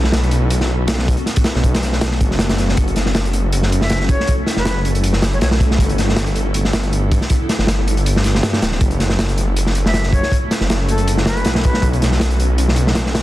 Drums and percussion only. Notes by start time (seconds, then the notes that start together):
0.04 snare
0.12 snare, closed hi-hat
0.23 closed hi-hat
0.31 closed hi-hat
0.50 closed hi-hat
0.61 snare
0.88 snare, closed hi-hat
0.98 snare
1.08 kick, closed hi-hat
1.17 closed hi-hat
1.26 snare, closed hi-hat
1.36 kick, closed hi-hat
1.44 snare, closed hi-hat
1.55 snare
1.64 kick, closed hi-hat
1.75 snare, closed hi-hat
1.83 snare, closed hi-hat
1.92 snare
2.01 snare, closed hi-hat
2.11 snare
2.21 kick, closed hi-hat
2.31 snare
2.39 snare, closed hi-hat
2.49 snare, closed hi-hat
2.58 snare, closed hi-hat
2.69 snare
2.77 kick, closed hi-hat
2.88 closed hi-hat
2.96 snare, closed hi-hat
3.06 snare
3.15 snare, closed hi-hat
3.25 closed hi-hat
3.33 closed hi-hat
3.52 closed hi-hat
3.63 snare
3.72 closed hi-hat
3.81 snare
3.90 snare, closed hi-hat
4.01 snare
4.09 kick, closed hi-hat
4.20 snare
4.27 kick, closed hi-hat
4.46 snare, closed hi-hat
4.56 snare
4.65 snare, closed hi-hat
4.85 closed hi-hat
4.95 closed hi-hat
5.04 closed hi-hat
5.13 snare
5.22 snare, closed hi-hat
5.32 closed hi-hat
5.41 snare, closed hi-hat
5.51 snare
5.60 kick, closed hi-hat
5.71 snare
5.78 kick, closed hi-hat
5.89 closed hi-hat
5.98 snare, closed hi-hat
6.09 snare
6.16 snare, closed hi-hat
6.27 closed hi-hat
6.36 closed hi-hat
6.54 closed hi-hat
6.65 snare
6.73 snare, closed hi-hat
6.83 closed hi-hat
6.93 closed hi-hat
7.12 kick, closed hi-hat
7.21 snare
7.30 kick, closed hi-hat
7.49 snare, closed hi-hat
7.59 snare
7.67 snare, closed hi-hat
7.88 closed hi-hat
7.97 closed hi-hat
8.06 closed hi-hat
8.16 snare
8.24 snare, closed hi-hat
8.35 snare
8.43 snare, closed hi-hat
8.53 snare
8.62 snare, closed hi-hat
8.72 snare
8.81 kick, closed hi-hat
8.91 closed hi-hat
9.00 snare, closed hi-hat
9.10 snare
9.19 snare, closed hi-hat
9.29 closed hi-hat
9.38 closed hi-hat
9.56 closed hi-hat
9.66 snare
9.75 closed hi-hat
9.86 snare
9.94 snare, closed hi-hat
10.03 snare
10.13 kick, closed hi-hat
10.23 snare
10.32 kick, closed hi-hat
10.51 snare, closed hi-hat
10.61 snare
10.70 snare, closed hi-hat
10.89 closed hi-hat
10.98 closed hi-hat
11.08 closed hi-hat
11.17 snare
11.26 snare, closed hi-hat
11.37 closed hi-hat
11.44 snare, closed hi-hat
11.55 snare
11.64 kick, closed hi-hat
11.74 snare
11.82 kick, closed hi-hat
11.93 closed hi-hat
12.02 snare, closed hi-hat
12.12 snare
12.20 snare, closed hi-hat
12.30 closed hi-hat
12.40 closed hi-hat
12.58 closed hi-hat
12.69 snare
12.76 closed hi-hat
12.87 snare
12.95 snare, closed hi-hat
13.06 snare
13.15 snare, closed hi-hat